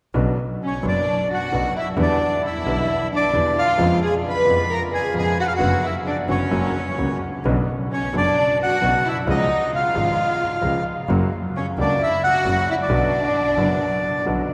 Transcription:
0.14 upright piano B1 B2 C#3 F#3 B3 D4, double bass B1
0.63 violin section C#4
0.67 bandoneon C#5
0.83 upright piano F#1 F#2 C#3 F#3 B3 D4, double bass F#1, violin section D4
0.88 bandoneon D5
1.31 violin section F#4, bandoneon F#5
1.52 double bass B1, upright piano B1 B2 C#3 F#3 B3 D4
1.76 violin section E4, bandoneon E5
1.97 double bass E2, upright piano E2 D3 E3 G3 B3 E4, violin section D4
2.02 bandoneon D5
2.44 violin section E4, bandoneon E5
2.65 double bass B1, upright piano B1 B2 D3 G3 B3 E4
3.13 violin section D4, bandoneon D5
3.33 upright piano E2 D3 E3 G3 B3 E4, double bass E2
3.57 violin section F4, bandoneon F5
3.78 upright piano F2 C#3 F3 G#3 B3 F4, double bass F2
4.02 violin section G#4, bandoneon G#5
4.26 violin section B4
4.30 bandoneon B5
4.45 upright piano F2 C#3 F3 G#3 B3 F4, double bass F2
4.70 violin section A#4, bandoneon A#5
4.92 violin section G#4, bandoneon G#5
5.14 upright piano F2 C#3 F3 G#3 B3 F4, double bass F2, violin section G#4
5.19 bandoneon G#5
5.40 violin section F#4, bandoneon F#5
5.46 violin section F4, bandoneon F5
5.52 violin section F#4
5.57 upright piano F#2 D3 F#3 B3 F#4, bandoneon F#5
5.61 double bass F#1
5.83 violin section E4, bandoneon E5
6.06 violin section D4, bandoneon D5
6.28 double bass F#1, upright piano F#2 D3 F#3 B3 F#4, violin section C#4, bandoneon C#5
6.51 double bass F#1, upright piano F#2 C#3 F#3 A#3 F#4
6.98 upright piano C#2 C#3 F#3 A#3 F#4, double bass C#2
7.44 double bass B1, upright piano B1 B2 C#3 F#3 B3 D4
7.91 violin section C#4, bandoneon C#5
8.13 upright piano F#1 F#2 C#3 F#3 B3 D4, double bass F#1, violin section D4
8.18 bandoneon D5
8.62 violin section F#4, bandoneon F#5
8.81 double bass B1, upright piano B1 B2 C#3 F#3 B3 D4
9.05 violin section E4, bandoneon E5
9.26 double bass C#2, upright piano C#2 C#3 F3 G#3 F4, violin section D#4, bandoneon D#5
9.74 violin section F4, bandoneon F5
9.94 upright piano G#1 G#2 C#3 F3 G#3 F4, double bass G#1
10.61 upright piano C#2 C#3 F3 G#3 F4, double bass C#2
11.08 double bass F#1, upright piano F#2 C#3 F#3 A#3 F#4
11.56 violin section C#4, bandoneon C#5
11.77 double bass C#2, upright piano C#2 C#3 F#3 A#3 F#4, violin section D4, bandoneon D5
12.01 violin section E4, bandoneon E5
12.24 violin section F#4, bandoneon F#5
12.45 double bass F#1, upright piano F#2 C#3 F#3 A#3 F#4
12.71 violin section E4, bandoneon E5
12.82 violin section D4, bandoneon D5
12.89 double bass B1, upright piano B1 B2 D3 F#3 B3 F#4
13.57 upright piano F#1 F#2 D3 F#3 B3 F#4, double bass F#1
14.26 upright piano B1 B2 D3 F#3 B3 F#4, double bass B1

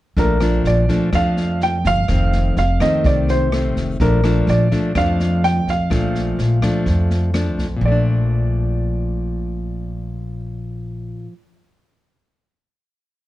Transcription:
0.17 upright bass A#1, nylon-string guitar A#2 F3 A3 D4, grand piano A#4, kick, snare
0.40 nylon-string guitar F3 A3 D4, cross-stick, snare
0.65 upright bass A#1, grand piano D5, snare
0.89 nylon-string guitar F3 A3 D4, kick, snare
1.13 upright bass F2, nylon-string guitar F2 F3 A3 D4, grand piano F5, kick, cross-stick, snare
1.37 snare
1.61 grand piano G5, snare
1.85 upright bass G1, grand piano F5, kick, snare
2.08 upright bass F1, nylon-string guitar F2 D#3 A3 C4, kick, cross-stick, snare
2.32 snare
2.57 upright bass F1, grand piano F5, snare
2.80 nylon-string guitar D#3 A3 C4, grand piano D#5, kick, cross-stick, snare
3.04 upright bass C2, nylon-string guitar C3, grand piano D5, kick, snare
3.28 grand piano C5, snare
3.52 nylon-string guitar D#3 A3 C4, cross-stick, snare
3.76 upright bass F1, kick, snare
4.00 upright bass A#1, nylon-string guitar A#2 F3 A3 D4, grand piano A#4, kick, snare
4.24 nylon-string guitar F3 A3 D4, cross-stick, snare
4.47 upright bass A#1, grand piano D5, snare
4.71 nylon-string guitar F3 A3 D4, kick, snare
4.95 upright bass F2, nylon-string guitar F2 F3 A3 D4, grand piano F5, kick, cross-stick, snare
5.20 snare
5.44 grand piano G5, snare
5.67 upright bass A#1, grand piano F5, kick, snare
5.90 upright bass A#1, nylon-string guitar A#2 F3 A3 D4, kick, cross-stick, snare
6.15 snare
6.39 upright bass A#1, snare
6.62 nylon-string guitar F3 A3 D4, kick, cross-stick, snare
6.86 upright bass F2, kick, snare
7.10 snare
7.34 nylon-string guitar F3 A3 D4, cross-stick, snare
7.58 upright bass A#1, kick, snare
7.77 nylon-string guitar A#2
7.81 upright bass A#1, nylon-string guitar F3
7.85 nylon-string guitar A3, grand piano D5
7.92 nylon-string guitar D4

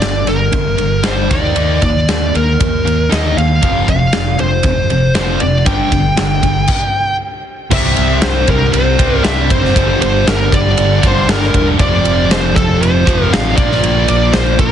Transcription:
Already playing: lead electric guitar D5
0.00 fingered electric bass G1, distorted electric guitar G2 D3, snare, ride
0.26 fingered electric bass G1, distorted electric guitar G2 D3, lead electric guitar A#4, snare, ride
0.52 fingered electric bass G1, distorted electric guitar G2 D3, kick, ride
0.77 fingered electric bass G1, distorted electric guitar G2 D3, ride
1.03 fingered electric bass G1, distorted electric guitar G2 D3 G3, lead electric guitar C5, snare, ride
1.30 fingered electric bass D#2, distorted electric guitar D#3 A#3 D#4, lead electric guitar D5, kick, snare, ride
1.56 fingered electric bass D#2, distorted electric guitar D#3 A#3 D#4, ride
1.82 fingered electric bass D#2, distorted electric guitar D#3 A#3, lead electric guitar D5, kick, ride
2.08 fingered electric bass D#2, distorted electric guitar D#3 A#3, snare, ride
2.35 fingered electric bass D#2, distorted electric guitar D#3 A#3, lead electric guitar A#4, ride
2.60 fingered electric bass D#2, distorted electric guitar D#3 A#3, kick, ride
2.85 fingered electric bass D#2, distorted electric guitar D#3 A#3, ride
3.09 fingered electric bass D#2, distorted electric guitar D#3 A#3 D#4, lead electric guitar D#5, snare, ride
3.36 fingered electric bass D#2, distorted electric guitar D#3 A#3, lead electric guitar F5, ride
3.61 fingered electric bass F1, distorted electric guitar F2 C3 F3, kick, ride
3.87 fingered electric bass F1, distorted electric guitar F2 C3, lead electric guitar F5, kick, ride
4.13 fingered electric bass F1, distorted electric guitar F2 C3, snare, ride
4.39 fingered electric bass F1, distorted electric guitar F2 C3, lead electric guitar C5, ride
4.63 fingered electric bass F1, distorted electric guitar F2 C3, kick, ride
4.90 fingered electric bass F1, distorted electric guitar F2 C3, ride
5.15 fingered electric bass F1, distorted electric guitar F2 C3 F3, lead electric guitar C5, snare, ride
5.40 fingered electric bass F1, distorted electric guitar F2 C3, lead electric guitar D5, ride
5.65 fingered electric bass G1, distorted electric guitar G2 D3 G3, lead electric guitar G5, kick, ride
5.92 fingered electric bass G1, distorted electric guitar G2 D3, kick, ride
6.16 fingered electric bass G1, distorted electric guitar G2 D3, snare, ride
6.42 fingered electric bass G1, distorted electric guitar G2 D3, kick, ride
6.67 kick, crash
7.71 fingered electric bass C2, distorted electric guitar C3 G3 C4, lead electric guitar E5, kick, crash
7.96 fingered electric bass C2, ride
8.22 fingered electric bass C2, lead electric guitar C5, snare, ride
8.47 fingered electric bass C2, lead electric guitar A#4, kick, ride
8.73 fingered electric bass C2, lead electric guitar C5, ride
8.98 fingered electric bass C2, distorted electric guitar C3 G3 C4, kick, ride
9.15 lead electric guitar A#4
9.23 fingered electric bass C2, distorted electric guitar C3 G3 C4, lead electric guitar E5, snare, ride
9.50 fingered electric bass F#1, lead electric guitar C5, kick, ride
9.65 snare
9.75 fingered electric bass G1, distorted electric guitar G2 D3 G3, kick, ride
10.02 fingered electric bass G1, lead electric guitar C5, ride
10.27 fingered electric bass G1, lead electric guitar A#4, snare, ride
10.52 fingered electric bass G1, lead electric guitar D5, kick, ride
10.77 fingered electric bass G1, ride
11.01 fingered electric bass G1, distorted electric guitar G2 D3 G3, kick, ride
11.07 lead electric guitar C5
11.26 fingered electric bass G1, distorted electric guitar G2 D3 G3, snare, ride
11.31 lead electric guitar A#4
11.42 snare
11.54 fingered electric bass E1, kick, ride
11.77 fingered electric bass F1, distorted electric guitar F2 C3 F3, lead electric guitar D5, kick, ride
12.04 fingered electric bass F1, ride
12.29 fingered electric bass F1, lead electric guitar C5, snare, ride
12.56 fingered electric bass F1, lead electric guitar A4, kick, ride
12.81 fingered electric bass F1, lead electric guitar C5, ride
13.05 fingered electric bass F1, distorted electric guitar F2 C3 F3, kick, ride
13.29 fingered electric bass A1, distorted electric guitar F2 C3 F3, lead electric guitar F5, ride
13.34 snare
13.56 fingered electric bass A#1, distorted electric guitar A#2 F3 A#3, lead electric guitar D5, kick, ride
13.72 snare
13.83 fingered electric bass A#1, ride
14.08 fingered electric bass A#1, lead electric guitar D5, ride
14.33 fingered electric bass A#1, lead electric guitar C5, snare, ride
14.59 fingered electric bass A#1, lead electric guitar A#4, kick, ride

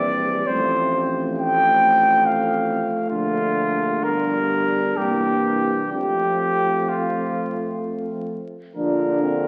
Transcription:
Already playing: tuba A#1, euphonium E3, trombone section G3, french horn section C4, cornet D5
0.47 tuba A1, euphonium F3, trombone section A3, cornet C5
1.38 cornet G5
2.26 cornet F5
3.10 tuba A#1, euphonium D3, french horn section D4, cornet F4
4.02 tuba G1, trombone section G3, cornet A#4
4.95 tuba C2, euphonium E3, trombone section A#3, cornet G4
5.92 tuba F2, euphonium F3, trombone section A3, french horn section C4, cornet G4
6.89 cornet F4
8.75 tuba A#1, euphonium D3, trombone section D4, french horn section F4, cornet A#4
9.22 trombone section C4

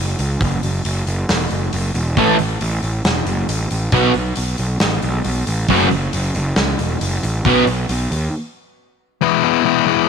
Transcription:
Already playing: picked electric bass F#1
0.19 picked electric bass C#2, open hi-hat
0.41 picked electric bass F#1, kick, open hi-hat
0.63 picked electric bass F#1, open hi-hat
0.85 picked electric bass F#1, open hi-hat
1.06 picked electric bass F#1, open hi-hat
1.29 picked electric bass E1, snare, open hi-hat
1.51 picked electric bass F#1, open hi-hat
1.73 picked electric bass F#1, open hi-hat
1.94 picked electric bass E1, open hi-hat
2.17 picked electric bass A1, overdriven electric guitar A2 E3 A3 C#4 A4, kick, open hi-hat
2.39 picked electric bass A1, open hi-hat
2.61 picked electric bass A1, open hi-hat
2.83 picked electric bass A1, open hi-hat
3.04 picked electric bass E1, snare, open hi-hat
3.26 picked electric bass F#1, open hi-hat
3.49 picked electric bass A1, open hi-hat
3.71 picked electric bass A1, open hi-hat
3.92 picked electric bass B1, overdriven electric guitar B2 F#3 B3 D#4 F#4, kick, open hi-hat
4.14 picked electric bass B1, open hi-hat
4.36 picked electric bass B1, open hi-hat
4.58 picked electric bass B1, open hi-hat
4.80 picked electric bass A1, snare, open hi-hat
5.02 picked electric bass B1, open hi-hat
5.24 picked electric bass B1, open hi-hat
5.47 picked electric bass A1, open hi-hat
5.68 picked electric bass F#1, overdriven electric guitar F#2 C#3 F#3 A3 C#4 F#4, kick, open hi-hat
5.91 picked electric bass F#1, open hi-hat
6.13 picked electric bass F#1, open hi-hat
6.35 picked electric bass F#1, open hi-hat
6.56 picked electric bass C#2, snare, open hi-hat
6.79 picked electric bass E1, open hi-hat
7.01 picked electric bass F#1, open hi-hat
7.23 picked electric bass A1, open hi-hat
7.45 picked electric bass B1, overdriven electric guitar B2 F#3 B3 C#4 F#4, kick, open hi-hat
7.67 picked electric bass B1, open hi-hat
7.89 picked electric bass B1, open hi-hat
8.11 picked electric bass D#2, open hi-hat
9.21 overdriven electric guitar E2 B2 E3 G#3 B3 E4
9.43 overdriven electric guitar E2 B2 E3 G#3 B3 E4
9.65 overdriven electric guitar E2 B2 E3 G#3 B3 E4
9.85 overdriven electric guitar E2 B2 E3 G#3 B3 E4

